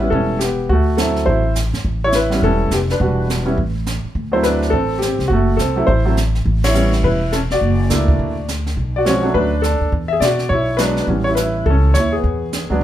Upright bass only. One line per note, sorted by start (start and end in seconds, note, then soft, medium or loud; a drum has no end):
0.12 0.67 E1 medium
0.69 1.24 D2 medium
1.27 1.70 A1 medium
1.73 1.84 G1 medium
1.85 2.39 A1 medium
2.42 2.69 E1 medium
2.71 2.98 F1 medium
3.00 3.55 E1 medium
3.57 4.01 A1 medium
4.04 muted upright bass stroke soft
4.15 4.70 D2 medium
4.72 5.16 A1 medium
5.19 5.29 C2 medium
5.30 5.57 F#1 medium
5.58 5.86 C2 medium
5.88 6.43 A1 medium
6.45 7.00 A1 medium
7.04 7.59 E1 medium
7.61 7.88 F#1 medium
7.90 8.17 C#2 medium
8.19 8.74 D2 medium
8.77 9.32 B1 medium
9.35 9.78 D2 medium
9.81 9.91 D#2 medium
9.92 10.19 E2 medium
10.20 10.48 B2 medium
10.50 11.05 B1 medium
11.07 11.63 A1 medium
11.66 11.93 C#2 medium
11.95 12.22 D#2 medium
12.24 12.67 E2 medium
12.70 12.80 D2 medium